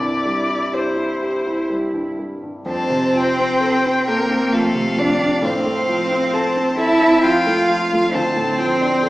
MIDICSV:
0, 0, Header, 1, 5, 480
1, 0, Start_track
1, 0, Key_signature, -1, "major"
1, 0, Tempo, 969305
1, 1324, Tempo, 933126
1, 1325, Time_signature, 3, 2, 24, 8
1, 1804, Tempo, 900901
1, 4725, End_track
2, 0, Start_track
2, 0, Title_t, "Violin"
2, 0, Program_c, 0, 40
2, 0, Note_on_c, 0, 74, 59
2, 366, Note_on_c, 0, 72, 42
2, 374, Note_off_c, 0, 74, 0
2, 846, Note_off_c, 0, 72, 0
2, 1336, Note_on_c, 0, 81, 58
2, 1578, Note_on_c, 0, 79, 59
2, 1586, Note_off_c, 0, 81, 0
2, 2290, Note_on_c, 0, 77, 56
2, 2298, Note_off_c, 0, 79, 0
2, 2773, Note_off_c, 0, 77, 0
2, 2775, Note_on_c, 0, 77, 58
2, 3260, Note_on_c, 0, 81, 53
2, 3268, Note_off_c, 0, 77, 0
2, 3495, Note_off_c, 0, 81, 0
2, 3500, Note_on_c, 0, 81, 55
2, 3724, Note_off_c, 0, 81, 0
2, 3727, Note_on_c, 0, 79, 65
2, 3967, Note_on_c, 0, 77, 60
2, 3975, Note_off_c, 0, 79, 0
2, 4221, Note_on_c, 0, 81, 59
2, 4229, Note_off_c, 0, 77, 0
2, 4455, Note_on_c, 0, 79, 52
2, 4463, Note_off_c, 0, 81, 0
2, 4725, Note_off_c, 0, 79, 0
2, 4725, End_track
3, 0, Start_track
3, 0, Title_t, "Violin"
3, 0, Program_c, 1, 40
3, 1328, Note_on_c, 1, 72, 70
3, 2030, Note_off_c, 1, 72, 0
3, 2054, Note_on_c, 1, 70, 67
3, 2301, Note_on_c, 1, 69, 61
3, 2309, Note_off_c, 1, 70, 0
3, 2536, Note_on_c, 1, 74, 67
3, 2544, Note_off_c, 1, 69, 0
3, 2781, Note_on_c, 1, 72, 59
3, 2789, Note_off_c, 1, 74, 0
3, 3497, Note_on_c, 1, 76, 59
3, 3505, Note_off_c, 1, 72, 0
3, 3732, Note_on_c, 1, 77, 60
3, 3740, Note_off_c, 1, 76, 0
3, 4212, Note_off_c, 1, 77, 0
3, 4215, Note_on_c, 1, 72, 68
3, 4725, Note_off_c, 1, 72, 0
3, 4725, End_track
4, 0, Start_track
4, 0, Title_t, "Cello"
4, 0, Program_c, 2, 42
4, 0, Note_on_c, 2, 64, 43
4, 1070, Note_off_c, 2, 64, 0
4, 1328, Note_on_c, 2, 60, 82
4, 2054, Note_on_c, 2, 58, 76
4, 2062, Note_off_c, 2, 60, 0
4, 2306, Note_on_c, 2, 57, 69
4, 2314, Note_off_c, 2, 58, 0
4, 2539, Note_on_c, 2, 62, 69
4, 2547, Note_off_c, 2, 57, 0
4, 2778, Note_on_c, 2, 60, 74
4, 2786, Note_off_c, 2, 62, 0
4, 3491, Note_off_c, 2, 60, 0
4, 3494, Note_on_c, 2, 64, 84
4, 3731, Note_on_c, 2, 65, 69
4, 3739, Note_off_c, 2, 64, 0
4, 4220, Note_on_c, 2, 60, 83
4, 4228, Note_off_c, 2, 65, 0
4, 4725, Note_off_c, 2, 60, 0
4, 4725, End_track
5, 0, Start_track
5, 0, Title_t, "Grand piano"
5, 0, Program_c, 3, 0
5, 0, Control_c, 3, 64, 127
5, 0, Note_on_c, 3, 36, 36
5, 1, Note_on_c, 3, 43, 31
5, 126, Note_on_c, 3, 55, 28
5, 198, Note_off_c, 3, 43, 0
5, 245, Note_on_c, 3, 64, 28
5, 320, Note_off_c, 3, 55, 0
5, 360, Note_on_c, 3, 67, 31
5, 438, Note_off_c, 3, 64, 0
5, 480, Note_on_c, 3, 64, 30
5, 555, Note_off_c, 3, 67, 0
5, 605, Note_on_c, 3, 67, 30
5, 675, Note_off_c, 3, 64, 0
5, 726, Note_on_c, 3, 64, 31
5, 797, Note_off_c, 3, 67, 0
5, 838, Note_on_c, 3, 55, 30
5, 918, Note_off_c, 3, 64, 0
5, 959, Note_on_c, 3, 43, 28
5, 1036, Note_off_c, 3, 55, 0
5, 1086, Note_on_c, 3, 55, 31
5, 1157, Note_off_c, 3, 43, 0
5, 1201, Note_on_c, 3, 43, 23
5, 1277, Note_off_c, 3, 55, 0
5, 1305, Note_off_c, 3, 36, 0
5, 1315, Note_on_c, 3, 41, 59
5, 1321, Note_off_c, 3, 43, 0
5, 1335, Control_c, 3, 64, 0
5, 1407, Control_c, 3, 64, 127
5, 1440, Note_on_c, 3, 48, 47
5, 1563, Note_on_c, 3, 53, 43
5, 1634, Note_off_c, 3, 48, 0
5, 1690, Note_on_c, 3, 60, 43
5, 1756, Note_off_c, 3, 53, 0
5, 1804, Note_on_c, 3, 69, 46
5, 1882, Note_off_c, 3, 60, 0
5, 1937, Note_on_c, 3, 60, 44
5, 2001, Note_off_c, 3, 69, 0
5, 2057, Note_on_c, 3, 69, 48
5, 2127, Note_off_c, 3, 60, 0
5, 2175, Note_on_c, 3, 60, 51
5, 2246, Note_off_c, 3, 69, 0
5, 2294, Note_on_c, 3, 53, 47
5, 2364, Note_off_c, 3, 60, 0
5, 2412, Note_on_c, 3, 48, 40
5, 2484, Note_off_c, 3, 53, 0
5, 2526, Note_on_c, 3, 53, 46
5, 2604, Note_off_c, 3, 48, 0
5, 2647, Note_on_c, 3, 48, 35
5, 2722, Note_off_c, 3, 53, 0
5, 2746, Note_off_c, 3, 41, 0
5, 2770, Note_on_c, 3, 45, 59
5, 2771, Note_off_c, 3, 48, 0
5, 2782, Control_c, 3, 64, 0
5, 2878, Control_c, 3, 64, 127
5, 2896, Note_on_c, 3, 57, 42
5, 3015, Note_on_c, 3, 53, 45
5, 3086, Note_off_c, 3, 57, 0
5, 3138, Note_on_c, 3, 60, 40
5, 3206, Note_off_c, 3, 53, 0
5, 3256, Note_on_c, 3, 69, 50
5, 3327, Note_off_c, 3, 60, 0
5, 3380, Note_on_c, 3, 60, 39
5, 3446, Note_off_c, 3, 69, 0
5, 3489, Note_on_c, 3, 69, 43
5, 3567, Note_off_c, 3, 60, 0
5, 3620, Note_on_c, 3, 60, 48
5, 3682, Note_off_c, 3, 69, 0
5, 3739, Note_on_c, 3, 53, 46
5, 3807, Note_off_c, 3, 60, 0
5, 3858, Note_on_c, 3, 57, 40
5, 3928, Note_off_c, 3, 53, 0
5, 3980, Note_on_c, 3, 53, 49
5, 4048, Note_off_c, 3, 57, 0
5, 4106, Note_on_c, 3, 57, 38
5, 4170, Note_off_c, 3, 53, 0
5, 4191, Note_off_c, 3, 45, 0
5, 4221, Note_off_c, 3, 57, 0
5, 4221, Note_on_c, 3, 38, 58
5, 4224, Control_c, 3, 64, 0
5, 4310, Control_c, 3, 64, 127
5, 4338, Note_on_c, 3, 45, 46
5, 4462, Note_on_c, 3, 53, 42
5, 4524, Note_off_c, 3, 45, 0
5, 4577, Note_on_c, 3, 62, 49
5, 4644, Note_off_c, 3, 53, 0
5, 4694, Note_on_c, 3, 69, 52
5, 4725, Note_off_c, 3, 38, 0
5, 4725, Note_off_c, 3, 62, 0
5, 4725, Note_off_c, 3, 69, 0
5, 4725, End_track
0, 0, End_of_file